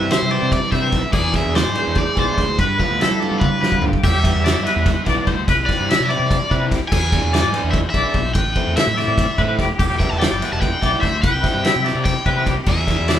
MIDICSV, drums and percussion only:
0, 0, Header, 1, 2, 480
1, 0, Start_track
1, 0, Tempo, 412371
1, 1316, Time_signature, 7, 3, 24, 8
1, 15355, End_track
2, 0, Start_track
2, 0, Title_t, "Drums"
2, 124, Note_on_c, 9, 51, 104
2, 136, Note_on_c, 9, 38, 117
2, 240, Note_off_c, 9, 51, 0
2, 253, Note_off_c, 9, 38, 0
2, 357, Note_on_c, 9, 51, 75
2, 474, Note_off_c, 9, 51, 0
2, 603, Note_on_c, 9, 36, 97
2, 610, Note_on_c, 9, 51, 98
2, 719, Note_off_c, 9, 36, 0
2, 726, Note_off_c, 9, 51, 0
2, 838, Note_on_c, 9, 51, 71
2, 839, Note_on_c, 9, 36, 68
2, 851, Note_on_c, 9, 38, 33
2, 955, Note_off_c, 9, 36, 0
2, 955, Note_off_c, 9, 51, 0
2, 967, Note_off_c, 9, 38, 0
2, 1074, Note_on_c, 9, 51, 70
2, 1078, Note_on_c, 9, 36, 74
2, 1086, Note_on_c, 9, 38, 33
2, 1190, Note_off_c, 9, 51, 0
2, 1194, Note_off_c, 9, 36, 0
2, 1203, Note_off_c, 9, 38, 0
2, 1313, Note_on_c, 9, 49, 97
2, 1317, Note_on_c, 9, 36, 109
2, 1429, Note_off_c, 9, 49, 0
2, 1433, Note_off_c, 9, 36, 0
2, 1556, Note_on_c, 9, 51, 78
2, 1558, Note_on_c, 9, 36, 80
2, 1568, Note_on_c, 9, 38, 36
2, 1672, Note_off_c, 9, 51, 0
2, 1674, Note_off_c, 9, 36, 0
2, 1685, Note_off_c, 9, 38, 0
2, 1805, Note_on_c, 9, 51, 95
2, 1818, Note_on_c, 9, 38, 116
2, 1921, Note_off_c, 9, 51, 0
2, 1934, Note_off_c, 9, 38, 0
2, 2041, Note_on_c, 9, 51, 73
2, 2158, Note_off_c, 9, 51, 0
2, 2271, Note_on_c, 9, 51, 94
2, 2279, Note_on_c, 9, 36, 93
2, 2388, Note_off_c, 9, 51, 0
2, 2396, Note_off_c, 9, 36, 0
2, 2523, Note_on_c, 9, 51, 67
2, 2525, Note_on_c, 9, 36, 78
2, 2639, Note_off_c, 9, 51, 0
2, 2642, Note_off_c, 9, 36, 0
2, 2767, Note_on_c, 9, 36, 80
2, 2773, Note_on_c, 9, 51, 71
2, 2785, Note_on_c, 9, 38, 32
2, 2884, Note_off_c, 9, 36, 0
2, 2889, Note_off_c, 9, 51, 0
2, 2902, Note_off_c, 9, 38, 0
2, 3011, Note_on_c, 9, 36, 103
2, 3012, Note_on_c, 9, 51, 86
2, 3127, Note_off_c, 9, 36, 0
2, 3128, Note_off_c, 9, 51, 0
2, 3255, Note_on_c, 9, 36, 79
2, 3265, Note_on_c, 9, 51, 68
2, 3371, Note_off_c, 9, 36, 0
2, 3382, Note_off_c, 9, 51, 0
2, 3505, Note_on_c, 9, 51, 98
2, 3517, Note_on_c, 9, 38, 109
2, 3621, Note_off_c, 9, 51, 0
2, 3634, Note_off_c, 9, 38, 0
2, 3750, Note_on_c, 9, 51, 66
2, 3866, Note_off_c, 9, 51, 0
2, 3973, Note_on_c, 9, 48, 59
2, 3975, Note_on_c, 9, 36, 100
2, 4089, Note_off_c, 9, 48, 0
2, 4091, Note_off_c, 9, 36, 0
2, 4226, Note_on_c, 9, 38, 73
2, 4331, Note_on_c, 9, 36, 74
2, 4342, Note_off_c, 9, 38, 0
2, 4443, Note_on_c, 9, 43, 100
2, 4447, Note_off_c, 9, 36, 0
2, 4559, Note_off_c, 9, 43, 0
2, 4576, Note_on_c, 9, 36, 88
2, 4692, Note_off_c, 9, 36, 0
2, 4697, Note_on_c, 9, 36, 116
2, 4707, Note_on_c, 9, 57, 113
2, 4813, Note_off_c, 9, 36, 0
2, 4824, Note_off_c, 9, 57, 0
2, 4938, Note_on_c, 9, 36, 88
2, 4943, Note_on_c, 9, 51, 93
2, 5054, Note_off_c, 9, 36, 0
2, 5059, Note_off_c, 9, 51, 0
2, 5187, Note_on_c, 9, 51, 115
2, 5200, Note_on_c, 9, 38, 119
2, 5303, Note_off_c, 9, 51, 0
2, 5316, Note_off_c, 9, 38, 0
2, 5430, Note_on_c, 9, 51, 81
2, 5547, Note_off_c, 9, 51, 0
2, 5656, Note_on_c, 9, 36, 98
2, 5656, Note_on_c, 9, 51, 113
2, 5669, Note_on_c, 9, 38, 38
2, 5773, Note_off_c, 9, 36, 0
2, 5773, Note_off_c, 9, 51, 0
2, 5785, Note_off_c, 9, 38, 0
2, 5891, Note_on_c, 9, 51, 73
2, 5898, Note_on_c, 9, 36, 72
2, 5904, Note_on_c, 9, 38, 33
2, 6008, Note_off_c, 9, 51, 0
2, 6014, Note_off_c, 9, 36, 0
2, 6020, Note_off_c, 9, 38, 0
2, 6132, Note_on_c, 9, 51, 83
2, 6136, Note_on_c, 9, 36, 79
2, 6248, Note_off_c, 9, 51, 0
2, 6253, Note_off_c, 9, 36, 0
2, 6379, Note_on_c, 9, 36, 117
2, 6386, Note_on_c, 9, 51, 110
2, 6495, Note_off_c, 9, 36, 0
2, 6502, Note_off_c, 9, 51, 0
2, 6622, Note_on_c, 9, 36, 80
2, 6625, Note_on_c, 9, 51, 74
2, 6638, Note_on_c, 9, 38, 38
2, 6738, Note_off_c, 9, 36, 0
2, 6741, Note_off_c, 9, 51, 0
2, 6754, Note_off_c, 9, 38, 0
2, 6873, Note_on_c, 9, 51, 110
2, 6886, Note_on_c, 9, 38, 119
2, 6990, Note_off_c, 9, 51, 0
2, 7002, Note_off_c, 9, 38, 0
2, 7103, Note_on_c, 9, 51, 84
2, 7219, Note_off_c, 9, 51, 0
2, 7341, Note_on_c, 9, 36, 97
2, 7349, Note_on_c, 9, 51, 97
2, 7457, Note_off_c, 9, 36, 0
2, 7465, Note_off_c, 9, 51, 0
2, 7580, Note_on_c, 9, 36, 81
2, 7587, Note_on_c, 9, 51, 70
2, 7696, Note_off_c, 9, 36, 0
2, 7703, Note_off_c, 9, 51, 0
2, 7816, Note_on_c, 9, 36, 78
2, 7819, Note_on_c, 9, 51, 81
2, 7832, Note_on_c, 9, 38, 34
2, 7933, Note_off_c, 9, 36, 0
2, 7935, Note_off_c, 9, 51, 0
2, 7948, Note_off_c, 9, 38, 0
2, 8055, Note_on_c, 9, 36, 115
2, 8055, Note_on_c, 9, 49, 113
2, 8171, Note_off_c, 9, 36, 0
2, 8171, Note_off_c, 9, 49, 0
2, 8292, Note_on_c, 9, 36, 88
2, 8297, Note_on_c, 9, 51, 80
2, 8408, Note_off_c, 9, 36, 0
2, 8414, Note_off_c, 9, 51, 0
2, 8540, Note_on_c, 9, 51, 118
2, 8552, Note_on_c, 9, 38, 114
2, 8656, Note_off_c, 9, 51, 0
2, 8669, Note_off_c, 9, 38, 0
2, 8773, Note_on_c, 9, 51, 78
2, 8889, Note_off_c, 9, 51, 0
2, 9003, Note_on_c, 9, 36, 102
2, 9003, Note_on_c, 9, 51, 102
2, 9120, Note_off_c, 9, 36, 0
2, 9120, Note_off_c, 9, 51, 0
2, 9242, Note_on_c, 9, 36, 69
2, 9243, Note_on_c, 9, 51, 70
2, 9358, Note_off_c, 9, 36, 0
2, 9359, Note_off_c, 9, 51, 0
2, 9473, Note_on_c, 9, 51, 76
2, 9480, Note_on_c, 9, 36, 83
2, 9590, Note_off_c, 9, 51, 0
2, 9596, Note_off_c, 9, 36, 0
2, 9718, Note_on_c, 9, 51, 109
2, 9721, Note_on_c, 9, 36, 111
2, 9834, Note_off_c, 9, 51, 0
2, 9838, Note_off_c, 9, 36, 0
2, 9958, Note_on_c, 9, 51, 85
2, 9962, Note_on_c, 9, 36, 79
2, 10075, Note_off_c, 9, 51, 0
2, 10078, Note_off_c, 9, 36, 0
2, 10204, Note_on_c, 9, 51, 106
2, 10217, Note_on_c, 9, 38, 120
2, 10320, Note_off_c, 9, 51, 0
2, 10333, Note_off_c, 9, 38, 0
2, 10453, Note_on_c, 9, 51, 79
2, 10466, Note_on_c, 9, 38, 38
2, 10570, Note_off_c, 9, 51, 0
2, 10583, Note_off_c, 9, 38, 0
2, 10682, Note_on_c, 9, 36, 103
2, 10691, Note_on_c, 9, 51, 101
2, 10799, Note_off_c, 9, 36, 0
2, 10807, Note_off_c, 9, 51, 0
2, 10923, Note_on_c, 9, 36, 82
2, 10930, Note_on_c, 9, 51, 67
2, 11039, Note_off_c, 9, 36, 0
2, 11046, Note_off_c, 9, 51, 0
2, 11160, Note_on_c, 9, 36, 77
2, 11168, Note_on_c, 9, 51, 72
2, 11180, Note_on_c, 9, 38, 34
2, 11276, Note_off_c, 9, 36, 0
2, 11284, Note_off_c, 9, 51, 0
2, 11297, Note_off_c, 9, 38, 0
2, 11401, Note_on_c, 9, 36, 110
2, 11407, Note_on_c, 9, 57, 109
2, 11517, Note_off_c, 9, 36, 0
2, 11523, Note_off_c, 9, 57, 0
2, 11640, Note_on_c, 9, 36, 90
2, 11652, Note_on_c, 9, 51, 71
2, 11757, Note_off_c, 9, 36, 0
2, 11768, Note_off_c, 9, 51, 0
2, 11887, Note_on_c, 9, 51, 103
2, 11900, Note_on_c, 9, 38, 117
2, 12004, Note_off_c, 9, 51, 0
2, 12017, Note_off_c, 9, 38, 0
2, 12131, Note_on_c, 9, 51, 81
2, 12143, Note_on_c, 9, 38, 36
2, 12247, Note_off_c, 9, 51, 0
2, 12260, Note_off_c, 9, 38, 0
2, 12359, Note_on_c, 9, 36, 98
2, 12368, Note_on_c, 9, 51, 99
2, 12476, Note_off_c, 9, 36, 0
2, 12484, Note_off_c, 9, 51, 0
2, 12600, Note_on_c, 9, 36, 78
2, 12607, Note_on_c, 9, 51, 74
2, 12716, Note_off_c, 9, 36, 0
2, 12723, Note_off_c, 9, 51, 0
2, 12837, Note_on_c, 9, 36, 73
2, 12838, Note_on_c, 9, 51, 84
2, 12851, Note_on_c, 9, 38, 32
2, 12953, Note_off_c, 9, 36, 0
2, 12955, Note_off_c, 9, 51, 0
2, 12967, Note_off_c, 9, 38, 0
2, 13077, Note_on_c, 9, 51, 108
2, 13078, Note_on_c, 9, 36, 115
2, 13194, Note_off_c, 9, 36, 0
2, 13194, Note_off_c, 9, 51, 0
2, 13312, Note_on_c, 9, 51, 86
2, 13315, Note_on_c, 9, 36, 82
2, 13325, Note_on_c, 9, 38, 38
2, 13428, Note_off_c, 9, 51, 0
2, 13431, Note_off_c, 9, 36, 0
2, 13441, Note_off_c, 9, 38, 0
2, 13555, Note_on_c, 9, 51, 110
2, 13568, Note_on_c, 9, 38, 116
2, 13671, Note_off_c, 9, 51, 0
2, 13684, Note_off_c, 9, 38, 0
2, 13801, Note_on_c, 9, 51, 91
2, 13814, Note_on_c, 9, 38, 38
2, 13917, Note_off_c, 9, 51, 0
2, 13930, Note_off_c, 9, 38, 0
2, 14030, Note_on_c, 9, 51, 100
2, 14032, Note_on_c, 9, 36, 96
2, 14042, Note_on_c, 9, 38, 34
2, 14146, Note_off_c, 9, 51, 0
2, 14148, Note_off_c, 9, 36, 0
2, 14159, Note_off_c, 9, 38, 0
2, 14268, Note_on_c, 9, 51, 80
2, 14270, Note_on_c, 9, 36, 86
2, 14385, Note_off_c, 9, 51, 0
2, 14386, Note_off_c, 9, 36, 0
2, 14509, Note_on_c, 9, 36, 78
2, 14511, Note_on_c, 9, 51, 85
2, 14625, Note_off_c, 9, 36, 0
2, 14628, Note_off_c, 9, 51, 0
2, 14740, Note_on_c, 9, 49, 107
2, 14746, Note_on_c, 9, 36, 114
2, 14857, Note_off_c, 9, 49, 0
2, 14863, Note_off_c, 9, 36, 0
2, 14989, Note_on_c, 9, 36, 83
2, 14992, Note_on_c, 9, 51, 80
2, 15004, Note_on_c, 9, 38, 37
2, 15105, Note_off_c, 9, 36, 0
2, 15108, Note_off_c, 9, 51, 0
2, 15121, Note_off_c, 9, 38, 0
2, 15223, Note_on_c, 9, 51, 115
2, 15236, Note_on_c, 9, 38, 117
2, 15340, Note_off_c, 9, 51, 0
2, 15353, Note_off_c, 9, 38, 0
2, 15355, End_track
0, 0, End_of_file